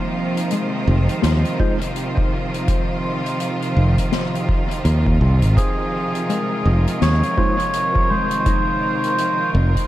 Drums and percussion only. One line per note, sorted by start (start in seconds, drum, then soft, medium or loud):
0.37 closed hi-hat medium
0.51 closed hi-hat medium
1.09 closed hi-hat medium
1.22 snare medium
1.22 closed hi-hat medium
1.45 closed hi-hat soft
1.60 kick loud
1.81 closed hi-hat medium
1.96 closed hi-hat medium
2.17 kick loud
2.54 closed hi-hat medium
2.68 kick loud
2.68 closed hi-hat medium
3.26 closed hi-hat soft
3.40 closed hi-hat medium
3.62 closed hi-hat soft
3.98 kick medium
3.98 closed hi-hat medium
4.12 snare medium
4.12 closed hi-hat medium
4.35 closed hi-hat medium
4.49 kick loud
4.71 closed hi-hat medium
4.85 closed hi-hat medium
5.07 kick loud
5.42 closed hi-hat medium
5.57 kick loud
5.57 closed hi-hat medium
6.15 closed hi-hat medium
6.30 closed hi-hat medium
6.87 closed hi-hat medium
7.01 snare medium
7.01 closed hi-hat medium
7.23 closed hi-hat soft
7.38 kick loud
7.60 closed hi-hat medium
7.73 closed hi-hat medium
7.96 kick loud
8.31 closed hi-hat medium
8.46 kick loud
8.46 closed hi-hat medium
9.04 closed hi-hat soft
9.18 closed hi-hat medium
9.76 kick medium
9.76 closed hi-hat medium